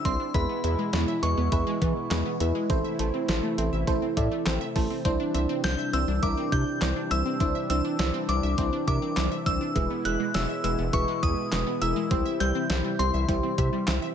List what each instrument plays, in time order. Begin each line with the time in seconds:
Already playing: analog synth pad D3 G3 C4 E4
0.05 analog synth bass C2, synth pluck C4, fm electric piano D4 E4 C5, synth bell C6, kick, closed hi-hat
0.20 synth pluck D4
0.34 analog synth bass E2, analog synth pad B2 E3 G#3 E4, synth pluck G#3, fm electric piano E4 G#4 B4, synth bell B5, kick, closed hi-hat
0.49 synth pluck B3
0.64 analog synth bass E2, fm electric piano E4 G#4 B4, synth pluck E5, closed hi-hat
0.79 synth pluck G#3
0.93 analog synth bass E2, synth pluck B3, fm electric piano E4 G#4 C#5, snare, closed hi-hat
1.08 synth pluck E5
1.23 analog synth bass E2, synth pluck G#3, fm electric piano E4 G#4 B4, synth bell C#6, closed hi-hat
1.37 analog synth bass E2, synth pluck B3
1.52 analog synth bass E2, fm electric piano E4 G#4 B4, synth pluck E5, kick, closed hi-hat
1.67 synth pluck G#3
1.82 analog synth bass E3, synth pluck B3, fm electric piano E4 G#4 B4, kick, closed hi-hat
2.11 analog synth bass E2, synth pluck G#3, fm electric piano E4 G#4 B4, snare, clap, closed hi-hat
2.26 synth pluck B3
2.40 analog synth bass E2, fm electric piano E4 G#4 B4, synth pluck E5, closed hi-hat
2.55 synth pluck G#3
2.70 analog synth bass A1, analog synth pad C3 A3 E4, synth pluck C4, fm electric piano E4 A4 C5, kick, closed hi-hat
2.84 synth pluck E5
2.99 analog synth bass A1, synth pluck A3, fm electric piano E4 A4 C5, closed hi-hat
3.14 synth pluck C4
3.29 analog synth bass A1, fm electric piano E4 A4 C5, synth pluck E5, snare, closed hi-hat
3.43 synth pluck A3
3.58 analog synth bass A1, synth pluck C4, fm electric piano E4 A4 C5, closed hi-hat
3.73 analog synth bass A1, synth pluck E5
3.87 analog synth bass A1, synth pluck A3, fm electric piano E4 A4 C5, kick, closed hi-hat
4.02 synth pluck C4
4.17 analog synth bass A2, fm electric piano E4 A4 D5 E5, synth pluck E5, kick, closed hi-hat
4.32 synth pluck A3
4.46 analog synth bass A1, synth pluck C4, fm electric piano E4 A4 C5 G5, snare, clap, closed hi-hat
4.61 synth pluck E5
4.76 analog synth bass A1, synth pluck A3, fm electric piano E4 A4 C5 A5, kick, open hi-hat
4.90 synth pluck C4
5.05 analog synth bass C2, analog synth pad E3 G3 D4, synth pluck C4, fm electric piano D4 E4 C5, kick, closed hi-hat
5.20 synth pluck D4
5.34 analog synth bass C2, fm electric piano D4 E4 C5, synth pluck E5, closed hi-hat
5.49 synth pluck C4
5.64 analog synth bass C2, fm electric piano D4 E4 C5, synth pluck D4, synth bell G6, snare, closed hi-hat
5.79 synth pluck E5
5.93 analog synth bass C2, synth pluck C4, fm electric piano D4 E4 C5, synth bell E6, closed hi-hat
6.08 analog synth bass C2, synth pluck D4
6.23 analog synth bass C2, fm electric piano D4 E4 A#4, synth pluck E5, synth bell D6, kick, closed hi-hat
6.37 synth pluck C4
6.52 analog synth bass C3, fm electric piano D4 E4 C5, synth pluck D4, synth bell G6, kick, closed hi-hat
6.81 analog synth bass C2, synth pluck C4, fm electric piano D4 E4 C5, snare, clap, closed hi-hat
6.96 synth pluck D4
7.11 analog synth bass C2, fm electric piano D4 E4 C5, synth pluck E5, synth bell E6, closed hi-hat
7.26 synth pluck C4
7.40 analog synth bass C2, fm electric piano D4 E4 C5, synth pluck D4, kick, closed hi-hat
7.55 synth pluck E5
7.70 analog synth bass C2, synth pluck C4, fm electric piano D4 E4 C5, synth bell E6, closed hi-hat
7.85 synth pluck D4
7.99 analog synth bass C2, fm electric piano D4 E4 C5, synth pluck E5, snare, closed hi-hat
8.14 synth pluck C4
8.29 analog synth bass C2, fm electric piano D4 E4 C5, synth pluck D4, synth bell D6, closed hi-hat
8.43 analog synth bass C2, synth pluck E5
8.58 analog synth bass C2, synth pluck C4, fm electric piano D4 E4 C5, kick, closed hi-hat
8.73 synth pluck D4
8.87 analog synth bass C3, fm electric piano D4 E4 A#4, synth pluck E5, synth bell D6, kick, closed hi-hat
9.02 synth pluck C4
9.17 analog synth bass C2, fm electric piano D4 E4 C5, synth pluck D4, snare, clap, closed hi-hat
9.32 synth pluck E5
9.46 analog synth bass C2, synth pluck C4, fm electric piano D4 E4 C5, synth bell E6, kick, closed hi-hat
9.61 synth pluck D4
9.75 analog synth bass E1, analog synth pad B2 G#3 E4, synth pluck G#3, fm electric piano E4 G#4 B4, kick, closed hi-hat
9.90 synth pluck B3
10.05 analog synth bass E1, fm electric piano E4 G#4 B4, synth pluck E5, synth bell F#6, closed hi-hat
10.20 synth pluck G#3
10.34 analog synth bass E1, synth pluck B3, fm electric piano E4 G#4 C#5, synth bell E6, snare, closed hi-hat
10.49 synth pluck E5
10.64 analog synth bass E1, synth pluck G#3, fm electric piano E4 G#4 B4, synth bell E6, closed hi-hat
10.79 analog synth bass E1, synth pluck B3
10.93 analog synth bass E1, fm electric piano E4 G#4 B4, synth pluck E5, synth bell C#6, kick, closed hi-hat
11.08 synth pluck G#3
11.23 analog synth bass E2, synth pluck B3, fm electric piano E4 G#4 B4, synth bell D#6, kick, closed hi-hat
11.52 analog synth bass E1, synth pluck G#3, fm electric piano E4 G#4 B4, snare, clap, closed hi-hat
11.67 synth pluck B3
11.81 analog synth bass E1, fm electric piano E4 G#4 A#4, synth pluck E5, synth bell E6, closed hi-hat
11.96 synth pluck G#3
12.11 analog synth bass C2, analog synth pad C3 G3, synth pluck C4, fm electric piano E4 G4 C5, kick, closed hi-hat
12.25 synth pluck E5
12.40 analog synth bass C2, synth pluck G3, fm electric piano E4 G4 C5, synth bell G6, closed hi-hat
12.55 synth pluck C4
12.70 analog synth bass C2, fm electric piano E4 G4 C5, synth pluck E5, snare, closed hi-hat
12.84 synth pluck G3
12.99 analog synth bass C2, synth pluck C4, fm electric piano E4 G4 C5, synth bell C6, closed hi-hat
13.14 analog synth bass C2, synth pluck E5
13.29 analog synth bass C2, synth pluck G3, fm electric piano E4 G4 C5, kick, closed hi-hat
13.43 synth pluck C4
13.58 analog synth bass C3, fm electric piano E4 G4 C5, synth pluck E5, kick, closed hi-hat
13.73 synth pluck G3
13.87 analog synth bass C2, synth pluck C4, fm electric piano E4 G4 C5, snare, clap, closed hi-hat
14.02 synth pluck E5